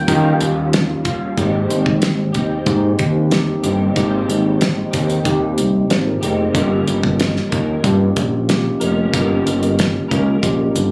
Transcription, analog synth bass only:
0.08 0.34 D#3 loud
0.41 0.92 D#2 medium
1.37 1.63 G#1 medium
1.70 2.36 G#1 medium
2.35 2.61 D#2 medium
2.67 2.92 G#2 loud
2.99 3.51 D#2 medium
3.63 3.89 G1 medium
3.96 4.22 G#1 loud
4.28 4.80 G#1 medium
4.94 5.19 D#2 medium
5.25 5.59 D#2 medium
5.58 5.84 C2 medium
5.90 6.16 G#1 medium
6.22 6.48 F1 medium
6.55 6.81 G1 loud
6.87 7.39 G1 medium
7.52 7.78 D#2 loud
7.84 8.10 G2 loud
8.17 8.68 A#1 medium
8.81 9.07 F1 medium
9.14 9.39 G1 loud
9.45 9.97 G1 loud
10.11 10.37 C#2 loud
10.43 10.69 A#1 medium
10.75 10.91 G1 medium

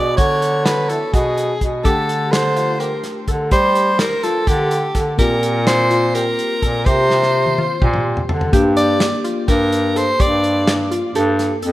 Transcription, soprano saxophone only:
0.00 0.16 D5 medium
0.17 0.66 C#5 medium
0.65 0.91 B4 medium
0.89 1.15 A4 medium
1.13 1.67 G#4 medium
1.84 2.34 A4 medium
2.32 2.81 C5 medium
2.80 3.04 A#4 medium
3.52 4.01 C5 medium
4.00 4.25 A#4 medium
4.23 4.49 A4 medium
4.48 5.01 G4 medium
5.19 5.63 A#4 medium
5.67 6.16 C5 medium
6.15 6.88 A#4 medium
6.86 8.05 C5 medium
8.77 9.21 D5 loud
9.49 9.99 A#4 medium
9.98 10.23 C5 medium
10.21 10.74 D5 medium

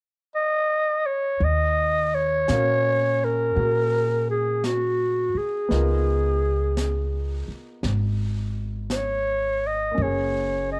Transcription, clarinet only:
0.35 1.08 D#5 medium
1.06 1.46 C#5 medium
1.44 2.17 D#5 medium
2.15 3.26 C#5 medium
3.24 4.29 A#4 medium
4.30 4.67 G#4 medium
4.65 5.39 F#4 medium
5.38 7.49 G#4 medium
8.92 8.98 C5 soft
8.96 9.68 C#5 medium
9.67 10.04 D#5 medium
10.02 10.70 C#5 medium
10.72 10.80 D#5 medium

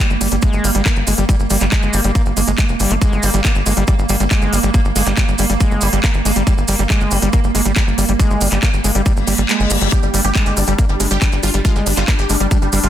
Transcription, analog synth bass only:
0.10 0.17 G1 medium
0.21 0.28 G1 loud
0.32 0.39 G1 medium
0.53 0.60 G1 medium
0.64 0.71 G1 loud
0.75 0.82 G1 medium
0.96 1.03 G1 medium
1.07 1.14 G1 loud
1.18 1.25 G1 medium
1.40 1.47 G1 medium
1.50 1.57 G1 medium
1.61 1.68 G1 medium
1.83 1.90 G1 medium
1.94 2.00 G1 loud
2.04 2.11 G1 medium
2.26 2.33 G1 medium
2.37 2.44 G1 loud
2.48 2.54 G1 medium
2.69 2.76 F1 medium
2.80 2.87 G1 loud
2.91 2.98 G1 medium
3.12 3.19 G1 medium
3.23 3.30 G1 medium
3.34 3.41 G1 loud
3.55 3.62 G1 medium
3.66 3.73 G1 loud
3.77 3.84 G1 medium
3.99 4.05 G1 medium
4.09 4.16 G1 loud
4.20 4.27 G1 medium
4.42 4.49 G1 medium
4.53 4.59 G1 loud
4.63 4.70 G1 medium
4.85 4.92 G1 medium
4.96 5.03 G1 medium
5.07 5.13 G1 medium
5.28 5.35 G1 medium
5.39 5.46 G1 medium
5.50 5.57 G1 medium
5.71 5.78 G1 medium
5.82 5.89 G1 loud
5.93 6.00 G1 medium
6.14 6.21 G1 medium
6.25 6.32 G1 loud
6.36 6.43 G1 medium
6.58 6.64 G1 medium
6.68 6.75 G1 loud
6.79 6.86 G1 loud
7.01 7.08 G1 medium
7.12 7.18 G1 loud
7.22 7.29 G1 medium
7.44 7.51 G1 medium
7.55 7.62 G1 loud
7.66 7.72 G1 medium
7.87 7.94 G1 medium
7.98 8.05 G1 loud
8.09 8.16 G1 medium
8.30 8.37 G1 medium
8.41 8.48 G1 loud
8.52 8.59 G1 loud
8.73 8.80 G1 medium
8.84 8.91 G1 loud
8.95 9.02 G1 medium
9.17 9.23 G1 medium
9.27 9.34 G1 loud
9.38 9.45 G1 medium
9.60 9.67 G1 medium
9.71 9.77 G1 loud
9.81 9.88 G1 medium
10.03 10.10 G1 medium
10.14 10.21 G1 loud
10.25 10.31 G1 medium
10.46 10.53 G1 medium
10.57 10.64 G1 loud
10.68 10.75 G1 medium
10.89 10.96 G1 medium
11.00 11.07 G1 loud
11.11 11.18 G1 medium
11.32 11.39 G1 medium
11.43 11.50 G1 loud
11.54 11.61 G1 medium
11.76 11.82 G1 medium
11.86 11.93 G1 loud
11.97 12.04 G1 medium
12.19 12.26 G1 medium
12.30 12.36 G1 loud
12.40 12.47 G1 medium
12.62 12.69 G1 medium
12.73 12.80 G1 loud
12.84 12.89 G1 medium

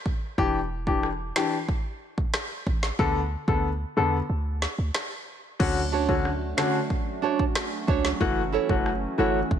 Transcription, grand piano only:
0.38 0.57 E3 medium
0.38 0.58 D4 medium
0.38 0.58 G4 loud
0.87 1.06 E3 medium
0.87 1.07 D4 medium
0.87 1.07 G4 medium
1.36 1.55 E3 medium
1.36 1.55 D4 medium
1.36 1.56 G4 medium
2.99 3.18 D3 medium
2.99 3.18 B3 medium
2.99 3.19 A4 loud
3.48 3.67 D3 medium
3.48 3.67 B3 medium
3.48 3.67 A4 medium
3.97 4.16 D3 medium
3.97 4.16 B3 medium
3.97 4.16 A4 medium
5.59 5.79 D3 medium
5.59 5.79 C#4 medium
5.59 5.79 F#4 medium
6.09 6.28 D3 medium
6.09 6.28 C#4 medium
6.09 6.28 F#4 medium
6.57 6.77 D3 medium
6.57 6.77 C#4 medium
6.57 6.77 F#4 medium
8.20 8.40 E3 medium
8.20 8.40 A3 medium
8.20 8.40 F#4 loud
8.69 8.89 E3 medium
8.69 8.89 A3 medium
8.69 8.89 F#4 medium
9.18 9.38 E3 medium
9.18 9.38 A3 medium
9.18 9.38 F#4 medium

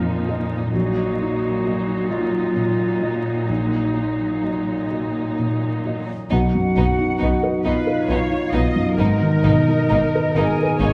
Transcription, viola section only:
0.00 0.74 F3 soft
0.00 0.70 D#4 soft
0.74 6.06 F#3 soft
0.74 6.06 D#4 soft
7.64 8.06 B4 soft
8.08 8.53 C#5 soft
8.52 8.97 D#5 medium
8.97 10.33 A#4 medium
10.35 10.79 A#4 medium
10.80 10.93 C#5 soft

